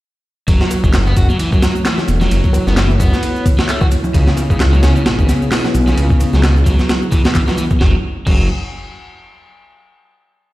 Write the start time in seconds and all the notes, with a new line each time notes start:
0.48 F#1 F#3 A3 E4 F#4 C#5, kick, ride, shaker
0.61 snare, high conga, shaker
0.71 ride, high bongo, shaker
0.84 F#1 F#3, kick, shaker
0.94 snare, clap, ride, high conga, shaker
1.06 B3, high bongo, shaker
1.16 F#1 F#4, kick, ride, shaker
1.30 F#3, high conga, shaker
1.39 F#2 E3, ride, shaker
1.52 F#2 F#3, kick, shaker
1.62 snare, ride, high conga, shaker
1.76 shaker
1.85 E3, snare, clap, ride, shaker
1.98 snare, low conga, shaker
2.08 E1, ride, high conga, shaker
2.21 F#3, snare, low conga, shaker
2.31 F#1, ride, shaker
2.44 kick, high conga, shaker
2.53 ride, high bongo, shaker
2.67 F#1 B3, snare, shaker
2.77 E3, snare, clap, ride, high conga, shaker
2.90 shaker
2.99 F#1 B3, kick, ride, shaker
3.13 snare, high conga, shaker
3.23 ride, shaker
3.36 shaker
3.45 kick, ride, high conga, shaker
3.58 E3, snare, shaker
3.68 A3, clap, ride, shaker
3.81 F#4, kick, high bongo, low conga, shaker
3.91 ride, high conga, shaker
4.04 low conga, shaker
4.14 C#2 C#3 B3 G#4, kick, ride, shaker
4.27 snare, high conga, shaker
4.37 ride, high bongo, shaker
4.50 C#2 C#3, kick, shaker
4.59 snare, clap, ride, high conga, shaker
4.72 F#3, high bongo, shaker
4.82 C#2 C#4, snare, ride, shaker
4.95 C#3, high conga, shaker
5.05 G#1 B2, snare, ride, shaker
5.18 G#1 C#3, kick, shaker
5.29 snare, ride, high conga, shaker
5.42 shaker
5.51 B2, snare, clap, open hi-hat, shaker
5.65 snare, low conga, shaker
5.74 B1, ride, high conga, shaker
5.87 C#3, snare, low conga, shaker
5.97 C#2 B4, ride, shaker
6.10 kick, high conga, shaker
6.20 ride, high bongo, shaker
6.33 C#2 F#3, snare, shaker
6.43 B2, snare, clap, ride, high conga, shaker
6.57 shaker
6.65 C#2 F#3, kick, ride, shaker
6.79 snare, high conga, shaker
6.89 snare, ride, shaker
7.02 shaker
7.11 E3, kick, ride, high conga, shaker
7.24 B2, snare, shaker
7.35 E3, kick, clap, ride, shaker
7.47 F#3, snare, high bongo, low conga, shaker
7.57 E3, ride, high conga, shaker
7.71 kick, low conga, shaker
7.80 F#1 F#3, kick, snare
8.26 F#1 F#3, kick, crash